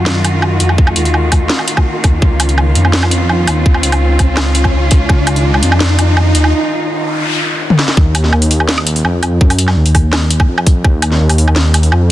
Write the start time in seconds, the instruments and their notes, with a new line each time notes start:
Already playing: detuned saw bass F#2, cello section D#3 F4 F#4, riser
0.06 snare
0.24 closed hi-hat, low woodblock
0.42 low woodblock
0.60 detuned saw bass F2, closed hi-hat
0.69 low woodblock
0.78 kick
0.87 low woodblock
0.96 detuned saw bass D#2, closed hi-hat
1.05 closed hi-hat
1.14 low woodblock
1.32 kick, closed hi-hat, low woodblock
1.50 snare
1.59 low woodblock
1.68 closed hi-hat
1.77 kick, low woodblock
2.04 detuned saw bass D#2, kick, closed hi-hat, low woodblock
2.22 detuned saw bass C#2, cello section C#4 F4, kick
2.40 closed hi-hat, low woodblock
2.49 closed hi-hat
2.58 low woodblock
2.75 detuned saw bass F2, closed hi-hat
2.85 low woodblock
2.93 snare
3.03 low woodblock
3.11 closed hi-hat
3.29 low woodblock
3.47 detuned saw bass D#2, closed hi-hat, low woodblock
3.66 kick
3.74 low woodblock
3.83 detuned saw bass C#2, closed hi-hat
3.92 closed hi-hat, low woodblock
4.19 kick, closed hi-hat, low woodblock
4.37 detuned saw bass C#2, snare, low woodblock
4.55 closed hi-hat
4.64 kick, low woodblock
4.91 kick, closed hi-hat
5.09 detuned saw bass C#2, cello section D#4, kick, low woodblock
5.27 closed hi-hat, low woodblock
5.36 closed hi-hat
5.54 low woodblock
5.63 detuned saw bass F2, closed hi-hat
5.72 low woodblock
5.80 snare
5.99 closed hi-hat, low woodblock
6.17 low woodblock
6.35 detuned saw bass D#2, closed hi-hat
6.44 low woodblock
6.53 noise sweep
7.70 high tom
7.79 snare
7.88 snare
7.97 detuned saw bass D#2, kick
8.15 closed hi-hat, low woodblock
8.24 snare
8.33 detuned saw bass D#2, low woodblock
8.42 open hi-hat
8.51 open hi-hat
8.60 low woodblock
8.69 snare
8.78 low woodblock
8.87 closed hi-hat
8.96 open hi-hat
9.05 detuned saw bass F2, low woodblock
9.23 closed hi-hat, low woodblock
9.41 detuned saw bass F#2, kick
9.50 open hi-hat, low woodblock
9.59 closed hi-hat
9.68 snare, low woodblock
9.76 detuned saw bass D#2
9.86 open hi-hat
9.95 kick, open hi-hat, low woodblock
10.13 snare, low woodblock
10.31 closed hi-hat
10.40 kick, low woodblock
10.48 detuned saw bass F2
10.58 low woodblock
10.67 kick, closed hi-hat
10.84 detuned saw bass D#2, kick, low woodblock
11.02 closed hi-hat, low woodblock
11.12 snare
11.20 detuned saw bass D#2
11.30 open hi-hat, low woodblock
11.38 open hi-hat
11.48 low woodblock
11.56 snare
11.74 closed hi-hat, low woodblock
11.83 open hi-hat
11.92 detuned saw bass F2, low woodblock